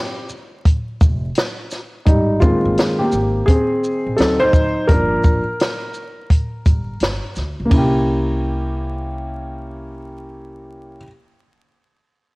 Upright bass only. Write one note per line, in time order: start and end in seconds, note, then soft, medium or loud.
1.01 1.28 F1 medium
2.07 2.52 G#1 medium
2.65 2.74 G1 medium
3.13 3.40 G#1 medium
4.06 4.16 A#1 medium
4.19 4.73 D2 medium
4.89 5.16 G1 medium
5.24 5.42 G#1 medium
6.66 6.93 G1 medium
7.01 7.19 G1 medium
7.37 7.54 D2 medium
7.60 7.69 C#2 medium
7.71 11.01 C2 medium